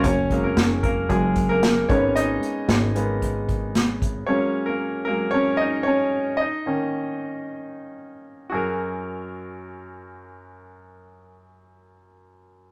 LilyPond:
<<
  \new Staff \with { instrumentName = "Grand piano" } { \time 4/4 \key fis \major \tempo 4 = 113 <cis' cis''>8. <ais ais'>8. <ais ais'>8 <gis gis'>8. <ais ais'>8. <cis' cis''>8 | <dis' dis''>4 r2. | <cis' cis''>8. <ais ais'>8. ais'8 <cis' cis''>8 <dis' dis''>8 <cis' cis''>4 | <dis' dis''>2. r4 |
<fis' gis' ais'>1~ | <fis' gis' ais'>1 | }
  \new Staff \with { instrumentName = "Grand piano" } { \clef bass \time 4/4 \key fis \major r8 <fis gis ais>2. <gis ais b>8 | r4. <gis ais b>8 r2 | <fis gis ais>4. <fis gis ais>8 r2 | r8 <dis ais cis'>4. r2 |
fis,1~ | fis,1 | }
  \new Staff \with { instrumentName = "Analog synth bass" } { \clef bass \time 4/4 \key fis \major fis,,4 fis,,4 fis,,4. gis,,8~ | gis,,8 r8 gis,,2. | r1 | r1 |
r1 | r1 | }
  \new DrumStaff \with { instrumentName = "Drums" } \drummode { \time 4/4 <hh bd>8 <hh bd>8 <hh sn>8 <hh bd>8 <hh bd>8 <hh bd>8 <hh sn>8 <hh bd>8 | hh8 hh8 <hh sn>8 hh8 <hh bd>8 <hh bd>8 <hh sn>8 <hh bd>8 | r4 r4 r4 r4 | r4 r4 r4 r4 |
r4 r4 r4 r4 | r4 r4 r4 r4 | }
>>